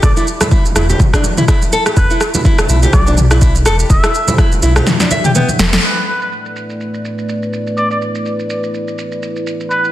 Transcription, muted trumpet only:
0.03 0.12 D5 medium
0.17 0.24 D5 medium
1.97 2.14 B4 medium
2.93 3.11 D5 medium
3.90 4.39 E5 medium
5.25 5.32 G5 medium
5.35 5.44 G5 medium
5.84 6.02 B4 medium
6.08 6.17 B4 medium
6.22 6.28 B4 medium
7.77 7.86 D5 medium
7.91 7.98 D5 medium
9.71 9.88 B4 medium

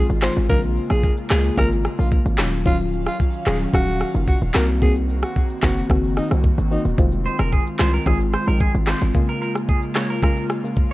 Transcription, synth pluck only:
0.22 0.43 D#3 medium
0.22 0.43 G#3 medium
0.22 0.43 C4 medium
0.22 0.43 F4 medium
0.49 1.24 C#3 loud
0.49 1.24 G#3 medium
0.49 1.24 A#3 medium
0.49 1.25 F4 loud
1.30 1.55 C#3 medium
1.30 1.56 G#3 medium
1.30 1.56 A#3 medium
1.30 1.56 F4 medium
1.57 1.95 C#3 loud
1.57 1.95 G#3 medium
1.57 1.95 A#3 medium
1.57 1.96 F4 loud
1.98 2.19 C#3 medium
1.98 2.19 G#3 medium
1.98 2.19 A#3 medium
1.98 2.19 F4 medium
2.38 2.59 D#3 medium
2.38 2.59 F#3 medium
2.38 2.59 C#4 medium
2.38 2.59 F4 medium
2.65 3.40 D#3 loud
2.65 3.41 F#3 loud
2.65 3.41 C#4 medium
2.65 3.41 F4 loud
3.46 3.72 D#3 medium
3.46 3.72 F#3 medium
3.46 3.72 C#4 medium
3.46 3.72 F4 medium
3.73 4.11 D#3 medium
3.73 4.12 F#3 medium
3.73 4.12 C#4 medium
3.73 4.12 F5 loud
4.14 4.35 D#3 medium
4.14 4.35 F#3 medium
4.14 4.35 C#4 medium
4.14 4.35 F4 medium
4.55 4.80 D#3 medium
4.55 4.80 A#3 medium
4.55 4.80 C4 medium
4.55 4.80 F#4 loud
4.81 5.57 D#3 loud
4.81 5.57 A#3 loud
4.81 5.57 C4 medium
4.81 5.57 F#4 loud
5.63 5.88 D#3 medium
5.63 5.88 A#3 medium
5.63 5.88 C4 medium
5.63 5.88 F#4 medium
5.90 6.28 D#3 loud
5.90 6.28 A#3 medium
5.90 6.28 C4 medium
5.90 6.28 F#4 loud
6.31 6.51 D#3 medium
6.31 6.51 A#3 medium
6.31 6.51 C4 medium
6.31 6.51 F#4 medium
6.71 6.92 D#3 medium
6.71 6.92 A#3 medium
6.71 6.92 C4 medium
6.71 6.92 F#4 medium
6.98 7.73 D#3 loud
6.98 7.73 G#3 medium
6.98 7.73 C4 medium
6.98 7.73 F4 loud
7.79 8.04 D#3 medium
7.79 8.04 G#3 medium
7.79 8.04 C4 medium
7.79 8.05 F4 medium
8.06 8.44 D#3 medium
8.06 8.44 G#3 medium
8.06 8.44 C4 medium
8.06 8.44 F4 loud
8.47 8.67 D#3 medium
8.47 8.67 G#3 medium
8.47 8.68 C4 medium
8.47 8.68 F4 medium
8.87 9.08 D#3 medium
8.87 9.08 G#3 medium
8.87 9.08 C4 medium
8.87 9.08 F4 medium
9.14 9.89 C#3 loud
9.14 9.89 G#3 loud
9.14 9.89 A#3 medium
9.14 9.89 F4 loud
9.95 10.20 C#3 medium
9.95 10.20 G#3 medium
9.95 10.21 A#3 medium
9.95 10.21 F4 medium
10.22 10.60 C#3 loud
10.22 10.60 G#3 medium
10.22 10.60 A#3 medium
10.22 10.61 F4 loud
10.64 10.84 C#3 medium
10.64 10.84 G#3 medium
10.64 10.84 A#3 medium
10.64 10.84 F4 medium

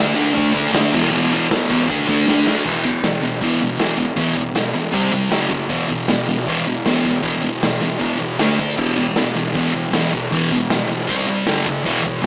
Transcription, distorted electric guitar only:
0.00 0.13 D3 medium
0.00 0.13 A3 medium
0.00 0.15 D4 loud
0.14 0.31 D3 loud
0.14 0.32 A3 loud
0.14 0.33 D4 loud
0.32 0.52 D3 medium
0.32 0.53 A3 medium
0.32 0.53 D4 medium
0.53 0.71 D3 medium
0.53 0.71 A3 loud
0.53 0.73 D4 loud
0.72 0.91 D3 medium
0.72 0.92 A3 medium
0.72 0.92 D4 loud
0.92 1.10 E2 loud
0.92 1.11 B2 loud
0.92 1.12 E3 medium
1.11 1.31 E2 loud
1.11 1.33 B2 loud
1.11 1.32 E3 loud
1.33 1.48 E2 medium
1.33 1.49 B2 loud
1.33 1.50 E3 loud
1.50 1.68 E2 medium
1.50 1.70 B2 medium
1.50 1.70 E3 loud
1.69 1.88 E2 medium
1.69 1.88 B2 medium
1.69 1.89 E3 medium
1.89 2.06 D3 loud
1.89 2.08 A3 loud
1.89 2.08 D4 loud
2.07 2.25 D3 medium
2.07 2.26 A3 loud
2.07 2.27 D4 loud
2.26 2.45 D3 medium
2.26 2.46 A3 medium
2.26 2.47 D4 medium
2.47 2.64 D3 medium
2.47 2.65 A3 medium
2.47 2.65 D4 medium
2.65 2.83 E2 medium
2.65 2.84 B2 loud
2.65 2.84 E3 loud
2.85 3.02 E2 medium
2.85 3.02 B2 medium
3.03 3.20 E2 medium
3.03 3.21 B2 medium
3.21 3.39 E2 medium
3.21 3.40 B2 medium
3.41 3.60 E2 medium
3.41 3.59 B2 medium
3.41 3.60 E3 loud
3.60 3.76 E2 medium
3.60 3.78 B2 medium
3.78 3.96 E2 medium
3.78 3.96 B2 medium
3.78 3.98 E3 loud
3.97 4.15 E2 medium
3.97 4.15 B2 medium
4.16 4.35 E2 loud
4.16 4.35 B2 medium
4.16 4.37 E3 loud
4.36 4.54 E2 medium
4.36 4.54 B2 medium
4.55 4.73 E2 medium
4.55 4.73 B2 medium
4.74 4.92 E2 medium
4.74 4.91 B2 medium
4.92 5.11 C3 loud
4.92 5.11 G3 loud
4.92 5.12 C4 loud
5.12 5.30 C3 medium
5.12 5.30 G3 medium
5.30 5.48 F#2 medium
5.30 5.48 C#3 medium
5.30 5.51 F#3 loud
5.49 5.68 F#2 medium
5.49 5.68 C#3 medium
5.69 5.87 E2 loud
5.69 5.87 B2 loud
5.69 5.89 E3 loud
5.88 6.06 E2 medium
5.88 6.07 B2 medium
6.09 6.26 E2 medium
6.09 6.27 B2 loud
6.28 6.45 E2 medium
6.28 6.46 B2 medium
6.47 6.65 E2 loud
6.47 6.65 B2 loud
6.47 6.66 E3 loud
6.66 6.84 E2 medium
6.66 6.84 B2 medium
6.86 7.04 E2 medium
6.86 7.04 B2 medium
6.86 7.05 E3 medium
7.05 7.20 E2 medium
7.05 7.22 B2 medium
7.21 7.41 E2 loud
7.21 7.42 B2 loud
7.21 7.42 E3 loud
7.42 7.60 E2 medium
7.42 7.61 B2 loud
7.63 7.80 E2 medium
7.63 7.81 B2 medium
7.82 7.98 E2 medium
7.82 7.99 B2 medium
7.99 8.17 E2 medium
7.99 8.17 B2 medium
7.99 8.19 E3 loud
8.18 8.37 E2 medium
8.18 8.37 B2 medium
8.39 8.58 D3 medium
8.39 8.58 A3 loud
8.39 8.58 D4 loud
8.59 8.76 D3 medium
8.59 8.77 A3 medium
8.76 8.95 E2 medium
8.76 8.96 B2 loud
8.76 8.96 E3 loud
8.97 9.15 E2 medium
8.97 9.15 B2 medium
9.17 9.34 E2 medium
9.17 9.35 B2 loud
9.35 9.53 E2 medium
9.35 9.53 B2 medium
9.54 9.72 E2 medium
9.54 9.73 B2 medium
9.54 9.74 E3 loud
9.74 9.91 E2 medium
9.74 9.91 B2 medium
9.92 10.10 E2 medium
9.92 10.11 B2 medium
9.92 10.11 E3 medium
10.11 10.29 E2 medium
10.11 10.30 B2 medium
10.31 10.50 E2 loud
10.31 10.50 B2 medium
10.31 10.51 E3 loud
10.52 10.69 E2 medium
10.52 10.69 B2 medium
10.71 10.86 E2 medium
10.71 10.86 B2 medium
10.87 11.06 E2 medium
10.87 11.06 B2 loud
11.07 11.26 C3 medium
11.07 11.26 G3 loud
11.07 11.27 C4 loud
11.27 11.45 C3 medium
11.27 11.45 G3 loud
11.47 11.65 F#2 medium
11.47 11.65 C#3 medium
11.47 11.66 F#3 loud
11.66 11.84 F#2 medium
11.66 11.84 C#3 medium
11.84 12.02 E2 loud
11.84 12.02 B2 loud
11.84 12.04 E3 loud
12.03 12.21 E2 medium
12.03 12.21 B2 medium
12.22 12.26 E2 medium
12.22 12.26 B2 medium

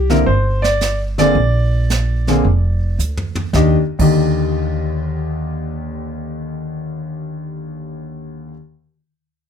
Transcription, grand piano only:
0.00 0.11 G4 medium
0.10 0.26 D3 medium
0.10 0.26 A#3 soft
0.10 0.26 C4 medium
0.10 0.26 E4 medium
0.10 0.28 A#4 medium
0.26 0.64 C5 medium
0.62 0.97 D5 medium
1.18 1.34 D3 medium
1.18 1.35 A#3 medium
1.18 1.35 C4 medium
1.18 1.35 G#4 medium
1.18 2.96 D5 loud
2.28 2.44 D3 medium
2.28 2.44 A#3 medium
2.28 2.44 C4 medium
2.28 2.44 G#4 medium
3.53 3.76 D#2 medium
3.53 3.76 D#3 medium
3.53 3.77 D4 medium
3.53 3.77 G4 medium
3.53 3.75 D#5 medium
3.99 8.51 D#2 medium
3.99 8.53 D3 medium
3.99 8.52 D#3 medium
3.99 8.54 G4 medium
3.99 8.49 D#5 medium

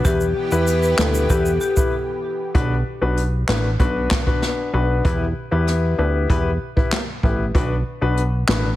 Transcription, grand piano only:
0.05 0.24 B3 medium
0.05 0.24 E4 medium
0.05 0.24 G4 medium
0.05 0.24 B4 loud
0.51 0.95 B3 medium
0.51 0.95 E4 medium
0.51 0.95 G4 medium
0.51 0.95 B4 medium
0.98 1.27 B3 medium
0.98 1.27 E4 medium
0.98 1.27 G4 medium
0.98 1.27 B4 medium
1.29 1.49 B3 loud
1.29 1.49 E4 medium
1.29 1.49 G4 medium
1.29 1.49 B4 loud
1.76 1.92 B3 medium
1.76 1.92 E4 medium
1.76 1.92 G4 medium
1.76 1.92 B4 medium
2.54 2.74 B3 medium
2.54 2.74 D4 medium
2.54 2.74 F#4 medium
2.54 2.74 B4 loud
3.01 3.20 B3 medium
3.01 3.21 D4 medium
3.01 3.21 F#4 medium
3.01 3.21 B4 medium
3.48 3.67 B3 medium
3.48 3.67 D4 medium
3.48 3.67 F#4 medium
3.48 3.68 B4 medium
3.79 4.23 B3 medium
3.79 4.23 D4 medium
3.79 4.23 F#4 medium
3.79 4.23 B4 loud
4.26 4.70 B3 medium
4.26 4.70 D4 medium
4.26 4.70 F#4 medium
4.26 4.70 B4 medium
4.73 5.02 B3 medium
4.73 5.02 D4 medium
4.73 5.02 F#4 medium
4.73 5.02 B4 medium
5.05 5.24 B3 medium
5.05 5.24 E4 medium
5.05 5.24 G4 medium
5.05 5.24 B4 loud
5.51 5.95 B3 medium
5.51 5.95 E4 medium
5.51 5.95 G4 medium
5.51 5.95 B4 medium
5.98 6.27 B3 medium
5.98 6.27 E4 medium
5.98 6.27 G4 medium
5.98 6.27 B4 medium
6.29 6.49 B3 medium
6.29 6.49 E4 medium
6.29 6.49 G4 medium
6.29 6.49 B4 loud
6.76 6.95 B3 medium
6.76 6.96 E4 medium
6.76 6.96 G4 medium
6.76 6.96 B4 medium
7.23 7.42 B3 medium
7.23 7.42 E4 medium
7.23 7.43 G4 medium
7.23 7.43 B4 medium
7.54 7.74 B3 medium
7.54 7.74 D4 medium
7.54 7.74 F#4 medium
7.54 7.74 B4 loud
8.01 8.20 B3 medium
8.01 8.21 D4 medium
8.01 8.21 F#4 medium
8.01 8.21 B4 medium
8.48 8.67 B3 medium
8.48 8.67 D4 medium
8.48 8.68 F#4 medium
8.48 8.68 B4 medium

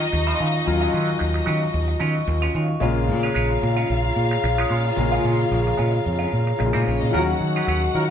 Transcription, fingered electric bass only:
0.13 0.32 D#2 loud
0.40 0.60 D#3 loud
0.67 0.86 D#2 medium
0.94 1.13 D#3 medium
1.21 1.40 D#2 medium
1.47 1.66 D#3 loud
1.74 1.93 D#2 loud
2.00 2.20 D#3 medium
2.27 2.47 D#2 loud
2.55 2.74 D#3 medium
2.81 3.10 A#1 medium
3.09 3.28 A#2 medium
3.35 3.55 A#1 medium
3.63 3.82 A#2 loud
3.90 4.09 A#1 loud
4.16 4.36 A#2 loud
4.44 4.63 A#1 loud
4.70 4.90 A#2 medium
4.97 5.17 A#1 medium
5.24 5.44 A#2 medium
5.51 5.71 A#1 loud
5.79 5.98 A#2 medium
6.06 6.25 F2 medium
6.33 6.52 A#2 medium
6.60 6.71 A#1 medium
6.75 6.83 A#2 medium
6.87 6.98 A#1 medium
7.03 7.11 A#2 medium
7.14 7.33 D#2 loud
7.41 7.60 D#3 medium
7.67 7.87 D#2 medium
7.95 8.10 D#3 medium

